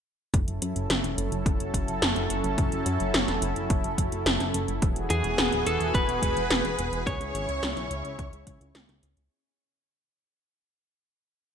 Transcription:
0.34 analog synth bass F#1, analog synth pad F#3 C#4 E4 A4, kick, closed hi-hat
0.48 analog synth bass F#1, closed hi-hat
0.62 analog synth bass F#2, closed hi-hat
0.76 analog synth bass F#1, closed hi-hat
0.90 analog synth bass F#1, snare, closed hi-hat
1.04 analog synth bass E1, closed hi-hat
1.18 analog synth bass F#1, closed hi-hat
1.32 analog synth bass F#1, closed hi-hat
1.46 analog synth bass F#1, kick, closed hi-hat
1.60 analog synth bass F#1, closed hi-hat
1.74 analog synth bass F#1, kick, closed hi-hat
1.88 analog synth bass F#1, closed hi-hat
2.02 analog synth bass F#1, snare, closed hi-hat
2.16 analog synth bass F#1, closed hi-hat
2.30 analog synth bass F#1, closed hi-hat
2.44 analog synth bass F#1, closed hi-hat
2.58 analog synth bass F#1, kick, closed hi-hat
2.72 analog synth bass F#1, closed hi-hat
2.86 analog synth bass F#2, closed hi-hat
3.00 analog synth bass F#1, closed hi-hat
3.14 analog synth bass F#1, snare, closed hi-hat
3.28 analog synth bass E1, snare, closed hi-hat
3.42 analog synth bass F#1, closed hi-hat
3.56 analog synth bass F#1, closed hi-hat
3.70 analog synth bass F#1, kick, closed hi-hat
3.84 analog synth bass F#1, closed hi-hat
3.98 analog synth bass F#1, kick, closed hi-hat
4.12 analog synth bass F#1, closed hi-hat
4.26 analog synth bass F#1, snare, closed hi-hat
4.40 analog synth bass F#1, snare, closed hi-hat
4.54 analog synth bass F#1, closed hi-hat
4.68 analog synth bass F#1, closed hi-hat
4.82 analog synth bass E1, analog synth pad E3 B3 F#4 G#4, kick, closed hi-hat
4.96 analog synth bass E1, closed hi-hat
5.10 analog synth bass E2, lead electric guitar G#4, string machine G#4, closed hi-hat
5.24 analog synth bass E1, closed hi-hat
5.38 analog synth bass E1, snare, closed hi-hat
5.52 analog synth bass D1, closed hi-hat
5.66 analog synth bass E1, string machine A4, lead electric guitar A4, closed hi-hat
5.80 analog synth bass E1, closed hi-hat
5.94 analog synth bass E1, string machine B4, lead electric guitar B4, kick, closed hi-hat
6.08 analog synth bass E1, closed hi-hat
6.22 analog synth bass E1, kick, closed hi-hat
6.37 analog synth bass E1, closed hi-hat
6.50 analog synth bass E1, snare, closed hi-hat
6.64 analog synth bass E1, closed hi-hat
6.78 analog synth bass E1, closed hi-hat
6.93 analog synth bass E1, closed hi-hat
7.07 analog synth bass C#2, analog synth pad C#3 C#4 E4, string machine C#5, lead electric guitar C#5, kick, closed hi-hat
7.20 analog synth bass C#2, closed hi-hat
7.35 analog synth bass G#1, closed hi-hat
7.49 analog synth bass C#2, closed hi-hat
7.63 analog synth bass C#2, snare, closed hi-hat
7.77 analog synth bass B1, snare, closed hi-hat
7.91 analog synth bass C#2, closed hi-hat
8.05 analog synth bass C#2, closed hi-hat
8.19 analog synth bass C#2, kick, closed hi-hat
8.33 analog synth bass C#2, closed hi-hat
8.47 analog synth bass C#2, kick, closed hi-hat
8.61 analog synth bass C#2, closed hi-hat
8.75 analog synth bass C#2, snare, closed hi-hat
8.89 analog synth bass C#2, snare, closed hi-hat
9.03 analog synth bass C#2, closed hi-hat
9.17 analog synth bass C#2, closed hi-hat

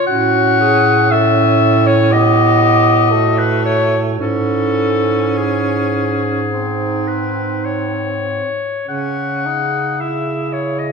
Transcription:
0.06 bass clarinet A2, tenor saxophone C#4, clarinet F#4 F#5
0.61 clarinet G#4
1.11 tenor saxophone C#4, clarinet A4 E5
1.86 clarinet C#5
2.11 tenor saxophone B3, clarinet G4 D#5
2.62 clarinet G4
3.11 tenor saxophone A3, clarinet F#4
3.38 clarinet B4
3.65 clarinet C#5
4.19 bass clarinet G#2, tenor saxophone C#4, clarinet E4 A4
5.37 clarinet G#4
6.50 tenor saxophone C4, clarinet D#4
7.07 clarinet B4
7.65 clarinet C#5
8.87 bass clarinet C#3, tenor saxophone C#4, clarinet G#4 F#5
9.46 tenor saxophone D#4
10.00 tenor saxophone E4, clarinet E5
10.52 clarinet C#5
10.79 clarinet D#5

